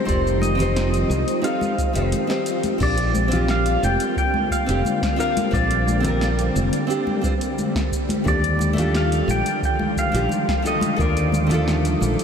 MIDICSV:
0, 0, Header, 1, 6, 480
1, 0, Start_track
1, 0, Key_signature, -2, "major"
1, 0, Tempo, 681818
1, 54, Time_signature, 4, 2, 24, 8
1, 8616, End_track
2, 0, Start_track
2, 0, Title_t, "Pedal steel guitar"
2, 0, Program_c, 0, 26
2, 47, Note_on_c, 0, 72, 98
2, 293, Note_on_c, 0, 75, 104
2, 298, Note_off_c, 0, 72, 0
2, 985, Note_off_c, 0, 75, 0
2, 1016, Note_on_c, 0, 77, 87
2, 1467, Note_off_c, 0, 77, 0
2, 1991, Note_on_c, 0, 74, 97
2, 2434, Note_off_c, 0, 74, 0
2, 2468, Note_on_c, 0, 77, 97
2, 2704, Note_off_c, 0, 77, 0
2, 2707, Note_on_c, 0, 79, 104
2, 2934, Note_off_c, 0, 79, 0
2, 2942, Note_on_c, 0, 79, 100
2, 3179, Note_off_c, 0, 79, 0
2, 3182, Note_on_c, 0, 77, 110
2, 3654, Note_off_c, 0, 77, 0
2, 3662, Note_on_c, 0, 77, 97
2, 3898, Note_on_c, 0, 74, 82
2, 3905, Note_off_c, 0, 77, 0
2, 5308, Note_off_c, 0, 74, 0
2, 5831, Note_on_c, 0, 74, 98
2, 6312, Note_on_c, 0, 77, 89
2, 6316, Note_off_c, 0, 74, 0
2, 6550, Note_off_c, 0, 77, 0
2, 6552, Note_on_c, 0, 79, 108
2, 6788, Note_off_c, 0, 79, 0
2, 6797, Note_on_c, 0, 79, 99
2, 7028, Note_off_c, 0, 79, 0
2, 7031, Note_on_c, 0, 77, 108
2, 7514, Note_on_c, 0, 75, 99
2, 7516, Note_off_c, 0, 77, 0
2, 7749, Note_off_c, 0, 75, 0
2, 7752, Note_on_c, 0, 74, 80
2, 8616, Note_off_c, 0, 74, 0
2, 8616, End_track
3, 0, Start_track
3, 0, Title_t, "Nylon-string guitar"
3, 0, Program_c, 1, 24
3, 37, Note_on_c, 1, 60, 93
3, 45, Note_on_c, 1, 63, 83
3, 53, Note_on_c, 1, 67, 80
3, 61, Note_on_c, 1, 74, 94
3, 379, Note_off_c, 1, 60, 0
3, 383, Note_off_c, 1, 63, 0
3, 386, Note_off_c, 1, 67, 0
3, 387, Note_on_c, 1, 60, 92
3, 391, Note_off_c, 1, 74, 0
3, 404, Note_on_c, 1, 63, 82
3, 421, Note_on_c, 1, 67, 83
3, 438, Note_on_c, 1, 72, 103
3, 971, Note_off_c, 1, 60, 0
3, 979, Note_off_c, 1, 63, 0
3, 988, Note_off_c, 1, 67, 0
3, 996, Note_off_c, 1, 72, 0
3, 996, Note_on_c, 1, 60, 83
3, 1004, Note_on_c, 1, 63, 82
3, 1014, Note_on_c, 1, 67, 77
3, 1022, Note_on_c, 1, 69, 96
3, 1217, Note_off_c, 1, 60, 0
3, 1221, Note_off_c, 1, 63, 0
3, 1226, Note_off_c, 1, 67, 0
3, 1229, Note_off_c, 1, 69, 0
3, 1360, Note_on_c, 1, 60, 91
3, 1368, Note_on_c, 1, 63, 82
3, 1376, Note_on_c, 1, 67, 81
3, 1385, Note_on_c, 1, 72, 94
3, 1579, Note_off_c, 1, 60, 0
3, 1583, Note_off_c, 1, 63, 0
3, 1587, Note_off_c, 1, 67, 0
3, 1591, Note_off_c, 1, 72, 0
3, 1600, Note_on_c, 1, 60, 87
3, 1607, Note_on_c, 1, 63, 79
3, 1616, Note_on_c, 1, 67, 83
3, 1626, Note_on_c, 1, 72, 102
3, 1937, Note_off_c, 1, 60, 0
3, 1941, Note_off_c, 1, 63, 0
3, 1945, Note_off_c, 1, 67, 0
3, 1950, Note_off_c, 1, 72, 0
3, 1959, Note_on_c, 1, 60, 81
3, 1966, Note_on_c, 1, 62, 69
3, 1975, Note_on_c, 1, 65, 68
3, 1980, Note_off_c, 1, 65, 0
3, 1983, Note_on_c, 1, 67, 84
3, 2069, Note_off_c, 1, 60, 0
3, 2073, Note_off_c, 1, 62, 0
3, 2081, Note_off_c, 1, 67, 0
3, 2309, Note_on_c, 1, 60, 88
3, 2327, Note_on_c, 1, 62, 78
3, 2342, Note_on_c, 1, 65, 87
3, 2360, Note_on_c, 1, 67, 104
3, 3253, Note_off_c, 1, 60, 0
3, 3262, Note_off_c, 1, 62, 0
3, 3270, Note_off_c, 1, 65, 0
3, 3279, Note_off_c, 1, 67, 0
3, 3283, Note_on_c, 1, 60, 92
3, 3291, Note_on_c, 1, 62, 84
3, 3299, Note_on_c, 1, 65, 86
3, 3304, Note_off_c, 1, 65, 0
3, 3307, Note_on_c, 1, 67, 104
3, 3387, Note_off_c, 1, 60, 0
3, 3391, Note_off_c, 1, 62, 0
3, 3400, Note_off_c, 1, 67, 0
3, 3634, Note_on_c, 1, 60, 92
3, 3642, Note_on_c, 1, 62, 82
3, 3650, Note_on_c, 1, 65, 87
3, 3658, Note_on_c, 1, 70, 97
3, 3856, Note_off_c, 1, 60, 0
3, 3860, Note_off_c, 1, 62, 0
3, 3864, Note_off_c, 1, 65, 0
3, 3868, Note_off_c, 1, 70, 0
3, 3878, Note_on_c, 1, 60, 95
3, 3885, Note_on_c, 1, 62, 82
3, 3894, Note_on_c, 1, 65, 87
3, 3902, Note_on_c, 1, 72, 106
3, 4219, Note_off_c, 1, 60, 0
3, 4223, Note_off_c, 1, 62, 0
3, 4227, Note_off_c, 1, 65, 0
3, 4227, Note_on_c, 1, 60, 88
3, 4231, Note_off_c, 1, 72, 0
3, 4243, Note_on_c, 1, 62, 82
3, 4260, Note_on_c, 1, 65, 85
3, 4278, Note_on_c, 1, 70, 97
3, 4811, Note_off_c, 1, 60, 0
3, 4819, Note_off_c, 1, 62, 0
3, 4827, Note_off_c, 1, 65, 0
3, 4836, Note_off_c, 1, 70, 0
3, 4836, Note_on_c, 1, 60, 91
3, 4845, Note_on_c, 1, 62, 85
3, 4854, Note_on_c, 1, 65, 78
3, 4858, Note_off_c, 1, 65, 0
3, 4861, Note_on_c, 1, 67, 99
3, 5056, Note_off_c, 1, 60, 0
3, 5061, Note_off_c, 1, 62, 0
3, 5069, Note_off_c, 1, 67, 0
3, 5078, Note_on_c, 1, 60, 90
3, 5087, Note_on_c, 1, 62, 81
3, 5096, Note_on_c, 1, 65, 85
3, 5103, Note_on_c, 1, 72, 102
3, 5150, Note_off_c, 1, 60, 0
3, 5155, Note_off_c, 1, 62, 0
3, 5159, Note_off_c, 1, 65, 0
3, 5162, Note_off_c, 1, 72, 0
3, 5800, Note_on_c, 1, 57, 80
3, 5809, Note_on_c, 1, 62, 73
3, 5816, Note_on_c, 1, 65, 68
3, 5823, Note_on_c, 1, 67, 86
3, 5910, Note_off_c, 1, 57, 0
3, 5914, Note_off_c, 1, 62, 0
3, 5917, Note_off_c, 1, 65, 0
3, 5921, Note_off_c, 1, 67, 0
3, 6148, Note_on_c, 1, 57, 100
3, 6164, Note_on_c, 1, 62, 84
3, 6183, Note_on_c, 1, 65, 86
3, 6197, Note_on_c, 1, 67, 103
3, 7093, Note_off_c, 1, 57, 0
3, 7101, Note_off_c, 1, 62, 0
3, 7110, Note_off_c, 1, 65, 0
3, 7117, Note_off_c, 1, 67, 0
3, 7122, Note_on_c, 1, 57, 94
3, 7132, Note_on_c, 1, 62, 82
3, 7139, Note_on_c, 1, 65, 86
3, 7147, Note_on_c, 1, 67, 109
3, 7227, Note_off_c, 1, 57, 0
3, 7232, Note_off_c, 1, 62, 0
3, 7236, Note_off_c, 1, 65, 0
3, 7240, Note_off_c, 1, 67, 0
3, 7479, Note_on_c, 1, 57, 94
3, 7489, Note_on_c, 1, 62, 84
3, 7496, Note_on_c, 1, 65, 85
3, 7504, Note_on_c, 1, 69, 101
3, 7698, Note_off_c, 1, 57, 0
3, 7703, Note_off_c, 1, 62, 0
3, 7707, Note_off_c, 1, 65, 0
3, 7711, Note_off_c, 1, 69, 0
3, 7719, Note_on_c, 1, 69, 98
3, 7728, Note_on_c, 1, 62, 83
3, 7736, Note_on_c, 1, 65, 85
3, 7741, Note_off_c, 1, 69, 0
3, 7744, Note_on_c, 1, 70, 98
3, 8064, Note_off_c, 1, 62, 0
3, 8068, Note_off_c, 1, 65, 0
3, 8072, Note_off_c, 1, 70, 0
3, 8072, Note_on_c, 1, 57, 92
3, 8091, Note_on_c, 1, 62, 83
3, 8107, Note_on_c, 1, 65, 84
3, 8123, Note_on_c, 1, 69, 102
3, 8616, Note_off_c, 1, 57, 0
3, 8616, Note_off_c, 1, 62, 0
3, 8616, Note_off_c, 1, 65, 0
3, 8616, Note_off_c, 1, 69, 0
3, 8616, End_track
4, 0, Start_track
4, 0, Title_t, "String machine"
4, 0, Program_c, 2, 50
4, 0, Note_on_c, 2, 51, 73
4, 0, Note_on_c, 2, 53, 67
4, 0, Note_on_c, 2, 55, 74
4, 0, Note_on_c, 2, 60, 74
4, 0, Note_on_c, 2, 65, 90
4, 1944, Note_off_c, 2, 60, 0
4, 1944, Note_off_c, 2, 65, 0
4, 1945, Note_off_c, 2, 51, 0
4, 1945, Note_off_c, 2, 53, 0
4, 1946, Note_off_c, 2, 55, 0
4, 1972, Note_on_c, 2, 60, 78
4, 1973, Note_on_c, 2, 50, 80
4, 1973, Note_on_c, 2, 58, 79
4, 1973, Note_on_c, 2, 65, 92
4, 1975, Note_on_c, 2, 55, 76
4, 3874, Note_off_c, 2, 65, 0
4, 3893, Note_on_c, 2, 67, 93
4, 5785, Note_off_c, 2, 50, 0
4, 5785, Note_off_c, 2, 58, 0
4, 5785, Note_off_c, 2, 60, 0
4, 5794, Note_off_c, 2, 67, 0
4, 5810, Note_on_c, 2, 51, 85
4, 5811, Note_on_c, 2, 50, 81
4, 5811, Note_on_c, 2, 53, 75
4, 5811, Note_on_c, 2, 65, 97
4, 8616, Note_off_c, 2, 50, 0
4, 8616, Note_off_c, 2, 51, 0
4, 8616, Note_off_c, 2, 53, 0
4, 8616, Note_off_c, 2, 55, 0
4, 8616, Note_off_c, 2, 65, 0
4, 8616, End_track
5, 0, Start_track
5, 0, Title_t, "Fingered electric bass"
5, 0, Program_c, 3, 33
5, 55, Note_on_c, 3, 29, 94
5, 725, Note_off_c, 3, 29, 0
5, 772, Note_on_c, 3, 36, 98
5, 863, Note_off_c, 3, 36, 0
5, 1377, Note_on_c, 3, 29, 89
5, 1494, Note_off_c, 3, 29, 0
5, 1972, Note_on_c, 3, 34, 94
5, 2643, Note_off_c, 3, 34, 0
5, 2694, Note_on_c, 3, 29, 99
5, 2784, Note_off_c, 3, 29, 0
5, 3298, Note_on_c, 3, 29, 87
5, 3383, Note_off_c, 3, 29, 0
5, 3890, Note_on_c, 3, 34, 96
5, 4562, Note_off_c, 3, 34, 0
5, 4615, Note_on_c, 3, 29, 96
5, 4705, Note_off_c, 3, 29, 0
5, 5813, Note_on_c, 3, 39, 98
5, 6484, Note_off_c, 3, 39, 0
5, 6531, Note_on_c, 3, 34, 93
5, 6623, Note_off_c, 3, 34, 0
5, 7137, Note_on_c, 3, 34, 85
5, 7223, Note_off_c, 3, 34, 0
5, 7736, Note_on_c, 3, 39, 96
5, 8405, Note_off_c, 3, 39, 0
5, 8457, Note_on_c, 3, 34, 97
5, 8546, Note_off_c, 3, 34, 0
5, 8616, End_track
6, 0, Start_track
6, 0, Title_t, "Drums"
6, 53, Note_on_c, 9, 36, 113
6, 61, Note_on_c, 9, 42, 49
6, 66, Note_on_c, 9, 82, 39
6, 124, Note_off_c, 9, 36, 0
6, 131, Note_off_c, 9, 42, 0
6, 136, Note_off_c, 9, 82, 0
6, 190, Note_on_c, 9, 82, 27
6, 260, Note_off_c, 9, 82, 0
6, 293, Note_on_c, 9, 63, 80
6, 302, Note_on_c, 9, 42, 30
6, 307, Note_on_c, 9, 82, 77
6, 364, Note_off_c, 9, 63, 0
6, 372, Note_off_c, 9, 42, 0
6, 377, Note_off_c, 9, 82, 0
6, 416, Note_on_c, 9, 64, 89
6, 423, Note_on_c, 9, 42, 47
6, 428, Note_on_c, 9, 82, 34
6, 486, Note_off_c, 9, 64, 0
6, 493, Note_off_c, 9, 42, 0
6, 499, Note_off_c, 9, 82, 0
6, 538, Note_on_c, 9, 38, 79
6, 538, Note_on_c, 9, 42, 55
6, 544, Note_on_c, 9, 82, 41
6, 609, Note_off_c, 9, 38, 0
6, 609, Note_off_c, 9, 42, 0
6, 614, Note_off_c, 9, 82, 0
6, 660, Note_on_c, 9, 42, 33
6, 665, Note_on_c, 9, 82, 29
6, 731, Note_off_c, 9, 42, 0
6, 736, Note_off_c, 9, 82, 0
6, 774, Note_on_c, 9, 63, 56
6, 780, Note_on_c, 9, 82, 79
6, 845, Note_off_c, 9, 63, 0
6, 851, Note_off_c, 9, 82, 0
6, 900, Note_on_c, 9, 42, 47
6, 905, Note_on_c, 9, 82, 35
6, 970, Note_off_c, 9, 42, 0
6, 975, Note_off_c, 9, 82, 0
6, 1015, Note_on_c, 9, 42, 55
6, 1020, Note_on_c, 9, 82, 43
6, 1086, Note_off_c, 9, 42, 0
6, 1091, Note_off_c, 9, 82, 0
6, 1135, Note_on_c, 9, 63, 84
6, 1144, Note_on_c, 9, 82, 31
6, 1206, Note_off_c, 9, 63, 0
6, 1215, Note_off_c, 9, 82, 0
6, 1253, Note_on_c, 9, 36, 97
6, 1256, Note_on_c, 9, 42, 30
6, 1261, Note_on_c, 9, 82, 72
6, 1323, Note_off_c, 9, 36, 0
6, 1327, Note_off_c, 9, 42, 0
6, 1332, Note_off_c, 9, 82, 0
6, 1376, Note_on_c, 9, 42, 49
6, 1381, Note_on_c, 9, 82, 31
6, 1447, Note_off_c, 9, 42, 0
6, 1452, Note_off_c, 9, 82, 0
6, 1493, Note_on_c, 9, 63, 63
6, 1494, Note_on_c, 9, 42, 61
6, 1500, Note_on_c, 9, 82, 47
6, 1564, Note_off_c, 9, 63, 0
6, 1565, Note_off_c, 9, 42, 0
6, 1570, Note_off_c, 9, 82, 0
6, 1618, Note_on_c, 9, 38, 80
6, 1623, Note_on_c, 9, 82, 31
6, 1689, Note_off_c, 9, 38, 0
6, 1694, Note_off_c, 9, 82, 0
6, 1732, Note_on_c, 9, 42, 47
6, 1738, Note_on_c, 9, 82, 72
6, 1803, Note_off_c, 9, 42, 0
6, 1808, Note_off_c, 9, 82, 0
6, 1855, Note_on_c, 9, 42, 44
6, 1857, Note_on_c, 9, 63, 84
6, 1860, Note_on_c, 9, 82, 30
6, 1925, Note_off_c, 9, 42, 0
6, 1927, Note_off_c, 9, 63, 0
6, 1930, Note_off_c, 9, 82, 0
6, 1972, Note_on_c, 9, 36, 116
6, 1973, Note_on_c, 9, 49, 88
6, 1978, Note_on_c, 9, 82, 39
6, 2042, Note_off_c, 9, 36, 0
6, 2043, Note_off_c, 9, 49, 0
6, 2048, Note_off_c, 9, 82, 0
6, 2095, Note_on_c, 9, 42, 47
6, 2165, Note_off_c, 9, 42, 0
6, 2214, Note_on_c, 9, 63, 94
6, 2217, Note_on_c, 9, 82, 76
6, 2284, Note_off_c, 9, 63, 0
6, 2287, Note_off_c, 9, 82, 0
6, 2334, Note_on_c, 9, 64, 103
6, 2335, Note_on_c, 9, 42, 62
6, 2341, Note_on_c, 9, 82, 34
6, 2404, Note_off_c, 9, 64, 0
6, 2406, Note_off_c, 9, 42, 0
6, 2411, Note_off_c, 9, 82, 0
6, 2453, Note_on_c, 9, 38, 81
6, 2458, Note_on_c, 9, 82, 43
6, 2523, Note_off_c, 9, 38, 0
6, 2528, Note_off_c, 9, 82, 0
6, 2575, Note_on_c, 9, 42, 45
6, 2580, Note_on_c, 9, 82, 31
6, 2645, Note_off_c, 9, 42, 0
6, 2651, Note_off_c, 9, 82, 0
6, 2700, Note_on_c, 9, 82, 79
6, 2702, Note_on_c, 9, 63, 72
6, 2771, Note_off_c, 9, 82, 0
6, 2773, Note_off_c, 9, 63, 0
6, 2817, Note_on_c, 9, 42, 60
6, 2822, Note_on_c, 9, 82, 35
6, 2887, Note_off_c, 9, 42, 0
6, 2892, Note_off_c, 9, 82, 0
6, 2931, Note_on_c, 9, 36, 95
6, 2941, Note_on_c, 9, 82, 45
6, 3002, Note_off_c, 9, 36, 0
6, 3012, Note_off_c, 9, 82, 0
6, 3054, Note_on_c, 9, 63, 84
6, 3125, Note_off_c, 9, 63, 0
6, 3171, Note_on_c, 9, 36, 62
6, 3182, Note_on_c, 9, 82, 75
6, 3242, Note_off_c, 9, 36, 0
6, 3253, Note_off_c, 9, 82, 0
6, 3301, Note_on_c, 9, 42, 53
6, 3306, Note_on_c, 9, 82, 32
6, 3371, Note_off_c, 9, 42, 0
6, 3376, Note_off_c, 9, 82, 0
6, 3414, Note_on_c, 9, 63, 65
6, 3423, Note_on_c, 9, 82, 49
6, 3485, Note_off_c, 9, 63, 0
6, 3494, Note_off_c, 9, 82, 0
6, 3534, Note_on_c, 9, 36, 103
6, 3540, Note_on_c, 9, 38, 84
6, 3545, Note_on_c, 9, 82, 32
6, 3604, Note_off_c, 9, 36, 0
6, 3611, Note_off_c, 9, 38, 0
6, 3616, Note_off_c, 9, 82, 0
6, 3662, Note_on_c, 9, 82, 75
6, 3732, Note_off_c, 9, 82, 0
6, 3778, Note_on_c, 9, 63, 95
6, 3780, Note_on_c, 9, 42, 57
6, 3785, Note_on_c, 9, 82, 33
6, 3849, Note_off_c, 9, 63, 0
6, 3850, Note_off_c, 9, 42, 0
6, 3855, Note_off_c, 9, 82, 0
6, 3892, Note_on_c, 9, 36, 114
6, 3903, Note_on_c, 9, 82, 41
6, 3962, Note_off_c, 9, 36, 0
6, 3973, Note_off_c, 9, 82, 0
6, 4017, Note_on_c, 9, 42, 42
6, 4088, Note_off_c, 9, 42, 0
6, 4136, Note_on_c, 9, 63, 96
6, 4141, Note_on_c, 9, 82, 80
6, 4207, Note_off_c, 9, 63, 0
6, 4212, Note_off_c, 9, 82, 0
6, 4254, Note_on_c, 9, 64, 96
6, 4256, Note_on_c, 9, 42, 61
6, 4261, Note_on_c, 9, 82, 34
6, 4325, Note_off_c, 9, 64, 0
6, 4326, Note_off_c, 9, 42, 0
6, 4332, Note_off_c, 9, 82, 0
6, 4374, Note_on_c, 9, 38, 79
6, 4380, Note_on_c, 9, 82, 46
6, 4445, Note_off_c, 9, 38, 0
6, 4450, Note_off_c, 9, 82, 0
6, 4497, Note_on_c, 9, 42, 46
6, 4502, Note_on_c, 9, 82, 34
6, 4567, Note_off_c, 9, 42, 0
6, 4572, Note_off_c, 9, 82, 0
6, 4613, Note_on_c, 9, 63, 63
6, 4619, Note_on_c, 9, 82, 81
6, 4684, Note_off_c, 9, 63, 0
6, 4689, Note_off_c, 9, 82, 0
6, 4737, Note_on_c, 9, 42, 59
6, 4742, Note_on_c, 9, 82, 37
6, 4807, Note_off_c, 9, 42, 0
6, 4812, Note_off_c, 9, 82, 0
6, 4859, Note_on_c, 9, 82, 46
6, 4929, Note_off_c, 9, 82, 0
6, 4976, Note_on_c, 9, 63, 80
6, 5047, Note_off_c, 9, 63, 0
6, 5092, Note_on_c, 9, 36, 110
6, 5098, Note_on_c, 9, 82, 75
6, 5163, Note_off_c, 9, 36, 0
6, 5168, Note_off_c, 9, 82, 0
6, 5218, Note_on_c, 9, 42, 50
6, 5224, Note_on_c, 9, 82, 31
6, 5289, Note_off_c, 9, 42, 0
6, 5294, Note_off_c, 9, 82, 0
6, 5337, Note_on_c, 9, 63, 72
6, 5339, Note_on_c, 9, 82, 50
6, 5407, Note_off_c, 9, 63, 0
6, 5409, Note_off_c, 9, 82, 0
6, 5456, Note_on_c, 9, 36, 109
6, 5462, Note_on_c, 9, 38, 85
6, 5467, Note_on_c, 9, 82, 32
6, 5526, Note_off_c, 9, 36, 0
6, 5532, Note_off_c, 9, 38, 0
6, 5537, Note_off_c, 9, 82, 0
6, 5573, Note_on_c, 9, 36, 65
6, 5583, Note_on_c, 9, 82, 86
6, 5643, Note_off_c, 9, 36, 0
6, 5653, Note_off_c, 9, 82, 0
6, 5695, Note_on_c, 9, 63, 94
6, 5703, Note_on_c, 9, 42, 60
6, 5708, Note_on_c, 9, 82, 35
6, 5766, Note_off_c, 9, 63, 0
6, 5773, Note_off_c, 9, 42, 0
6, 5778, Note_off_c, 9, 82, 0
6, 5813, Note_on_c, 9, 36, 126
6, 5825, Note_on_c, 9, 82, 44
6, 5883, Note_off_c, 9, 36, 0
6, 5895, Note_off_c, 9, 82, 0
6, 5942, Note_on_c, 9, 42, 40
6, 6012, Note_off_c, 9, 42, 0
6, 6048, Note_on_c, 9, 63, 89
6, 6062, Note_on_c, 9, 82, 85
6, 6118, Note_off_c, 9, 63, 0
6, 6133, Note_off_c, 9, 82, 0
6, 6174, Note_on_c, 9, 64, 99
6, 6183, Note_on_c, 9, 42, 55
6, 6188, Note_on_c, 9, 82, 36
6, 6244, Note_off_c, 9, 64, 0
6, 6253, Note_off_c, 9, 42, 0
6, 6258, Note_off_c, 9, 82, 0
6, 6297, Note_on_c, 9, 38, 78
6, 6302, Note_on_c, 9, 82, 47
6, 6368, Note_off_c, 9, 38, 0
6, 6373, Note_off_c, 9, 82, 0
6, 6422, Note_on_c, 9, 42, 43
6, 6427, Note_on_c, 9, 82, 32
6, 6492, Note_off_c, 9, 42, 0
6, 6497, Note_off_c, 9, 82, 0
6, 6532, Note_on_c, 9, 63, 72
6, 6544, Note_on_c, 9, 82, 87
6, 6602, Note_off_c, 9, 63, 0
6, 6614, Note_off_c, 9, 82, 0
6, 6660, Note_on_c, 9, 42, 55
6, 6665, Note_on_c, 9, 82, 37
6, 6730, Note_off_c, 9, 42, 0
6, 6736, Note_off_c, 9, 82, 0
6, 6775, Note_on_c, 9, 36, 95
6, 6783, Note_on_c, 9, 82, 48
6, 6845, Note_off_c, 9, 36, 0
6, 6853, Note_off_c, 9, 82, 0
6, 6895, Note_on_c, 9, 63, 91
6, 6965, Note_off_c, 9, 63, 0
6, 7015, Note_on_c, 9, 36, 64
6, 7024, Note_on_c, 9, 82, 81
6, 7086, Note_off_c, 9, 36, 0
6, 7094, Note_off_c, 9, 82, 0
6, 7143, Note_on_c, 9, 42, 49
6, 7148, Note_on_c, 9, 82, 35
6, 7213, Note_off_c, 9, 42, 0
6, 7219, Note_off_c, 9, 82, 0
6, 7246, Note_on_c, 9, 63, 76
6, 7263, Note_on_c, 9, 82, 53
6, 7316, Note_off_c, 9, 63, 0
6, 7334, Note_off_c, 9, 82, 0
6, 7379, Note_on_c, 9, 36, 114
6, 7384, Note_on_c, 9, 38, 81
6, 7389, Note_on_c, 9, 82, 34
6, 7449, Note_off_c, 9, 36, 0
6, 7455, Note_off_c, 9, 38, 0
6, 7460, Note_off_c, 9, 82, 0
6, 7503, Note_on_c, 9, 82, 82
6, 7574, Note_off_c, 9, 82, 0
6, 7612, Note_on_c, 9, 63, 98
6, 7621, Note_on_c, 9, 42, 53
6, 7626, Note_on_c, 9, 82, 34
6, 7682, Note_off_c, 9, 63, 0
6, 7691, Note_off_c, 9, 42, 0
6, 7696, Note_off_c, 9, 82, 0
6, 7736, Note_on_c, 9, 36, 121
6, 7744, Note_on_c, 9, 82, 43
6, 7807, Note_off_c, 9, 36, 0
6, 7815, Note_off_c, 9, 82, 0
6, 7862, Note_on_c, 9, 42, 39
6, 7868, Note_on_c, 9, 82, 29
6, 7933, Note_off_c, 9, 42, 0
6, 7938, Note_off_c, 9, 82, 0
6, 7972, Note_on_c, 9, 63, 81
6, 7984, Note_on_c, 9, 82, 82
6, 8042, Note_off_c, 9, 63, 0
6, 8055, Note_off_c, 9, 82, 0
6, 8096, Note_on_c, 9, 64, 101
6, 8103, Note_on_c, 9, 42, 52
6, 8108, Note_on_c, 9, 82, 37
6, 8166, Note_off_c, 9, 64, 0
6, 8173, Note_off_c, 9, 42, 0
6, 8178, Note_off_c, 9, 82, 0
6, 8220, Note_on_c, 9, 38, 76
6, 8226, Note_on_c, 9, 82, 43
6, 8291, Note_off_c, 9, 38, 0
6, 8296, Note_off_c, 9, 82, 0
6, 8342, Note_on_c, 9, 42, 42
6, 8348, Note_on_c, 9, 82, 31
6, 8413, Note_off_c, 9, 42, 0
6, 8418, Note_off_c, 9, 82, 0
6, 8453, Note_on_c, 9, 63, 72
6, 8466, Note_on_c, 9, 82, 87
6, 8523, Note_off_c, 9, 63, 0
6, 8536, Note_off_c, 9, 82, 0
6, 8584, Note_on_c, 9, 42, 53
6, 8589, Note_on_c, 9, 82, 37
6, 8616, Note_off_c, 9, 42, 0
6, 8616, Note_off_c, 9, 82, 0
6, 8616, End_track
0, 0, End_of_file